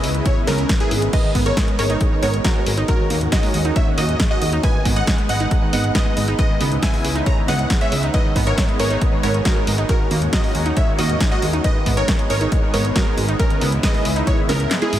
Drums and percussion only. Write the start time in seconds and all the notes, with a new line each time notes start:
0.04 open hi-hat
0.15 closed hi-hat
0.26 kick, closed hi-hat
0.47 snare, open hi-hat
0.58 closed hi-hat
0.69 kick, snare, closed hi-hat
0.80 closed hi-hat
0.91 open hi-hat
1.02 closed hi-hat
1.13 kick, closed hi-hat, crash
1.35 kick, open hi-hat
1.46 closed hi-hat
1.57 kick, snare, closed hi-hat
1.68 closed hi-hat
1.79 open hi-hat
1.90 closed hi-hat
2.01 kick, closed hi-hat
2.23 open hi-hat
2.34 closed hi-hat
2.45 kick, snare, closed hi-hat
2.66 open hi-hat
2.77 closed hi-hat
2.88 kick, closed hi-hat
3.10 open hi-hat
3.21 closed hi-hat
3.32 kick, snare, closed hi-hat
3.43 open hi-hat
3.54 open hi-hat
3.65 closed hi-hat
3.76 kick, closed hi-hat
3.98 open hi-hat
4.09 closed hi-hat
4.20 kick, snare, closed hi-hat
4.42 open hi-hat
4.52 closed hi-hat
4.63 kick, closed hi-hat
4.85 kick, open hi-hat
4.96 closed hi-hat
5.07 kick, snare, closed hi-hat
5.18 closed hi-hat
5.29 open hi-hat
5.40 closed hi-hat
5.51 kick, closed hi-hat
5.73 open hi-hat
5.84 closed hi-hat
5.95 kick, snare, closed hi-hat
6.17 open hi-hat
6.28 closed hi-hat
6.39 kick, closed hi-hat
6.61 open hi-hat
6.72 closed hi-hat
6.83 kick, snare, closed hi-hat
6.94 open hi-hat
7.05 open hi-hat
7.16 closed hi-hat
7.26 kick, closed hi-hat
7.48 snare, open hi-hat
7.59 closed hi-hat
7.70 kick, snare, closed hi-hat
7.81 closed hi-hat
7.92 open hi-hat
8.03 closed hi-hat
8.14 kick, closed hi-hat
8.36 kick, open hi-hat
8.47 closed hi-hat
8.58 kick, snare, closed hi-hat
8.69 closed hi-hat
8.80 open hi-hat
8.91 closed hi-hat
9.01 kick, closed hi-hat
9.23 open hi-hat
9.34 closed hi-hat
9.45 kick, snare, closed hi-hat
9.67 open hi-hat
9.78 closed hi-hat
9.89 kick, closed hi-hat
10.11 open hi-hat
10.22 closed hi-hat
10.33 kick, snare, closed hi-hat
10.44 open hi-hat
10.55 open hi-hat
10.66 closed hi-hat
10.77 kick, closed hi-hat
10.99 open hi-hat
11.10 closed hi-hat
11.21 kick, snare, closed hi-hat
11.42 open hi-hat
11.53 closed hi-hat
11.64 kick, closed hi-hat
11.86 kick, open hi-hat
11.97 closed hi-hat
12.08 kick, snare, closed hi-hat
12.19 closed hi-hat
12.30 open hi-hat
12.41 closed hi-hat
12.52 kick, closed hi-hat
12.74 open hi-hat
12.85 closed hi-hat
12.96 kick, snare, closed hi-hat
13.18 open hi-hat
13.29 closed hi-hat
13.39 kick, closed hi-hat
13.50 closed hi-hat
13.61 open hi-hat
13.72 closed hi-hat
13.83 kick, snare, closed hi-hat
13.94 open hi-hat
14.05 open hi-hat
14.16 closed hi-hat
14.27 kick, closed hi-hat
14.49 snare, open hi-hat
14.60 closed hi-hat
14.71 snare, clap, closed hi-hat
14.82 closed hi-hat
14.93 open hi-hat